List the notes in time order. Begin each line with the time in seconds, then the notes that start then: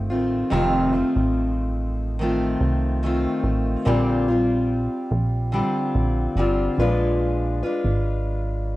Already playing: G1 D#3 A3 C4
0.10 A1 D#3 A3 C4 F4
0.50 F1 F2 C3 D#3 A3 C4 F4
0.93 D#3 A3 C4 F4
1.16 A1
2.19 D#3 A3 C4 F4
2.60 C2
3.03 D#3 A3 C4 F4
3.43 A1
3.86 A#1 A#2 D3 G3 C4 F4
4.28 G3 C4 F4
5.11 A#1
5.52 D3 G3 C4 F4
5.95 A#1
6.36 G1 D3 G3 C4 F4
6.78 A#1 A#2 F3 G#3 D4 F4 B4
7.63 G#3 D4 F4 B4
7.85 G#1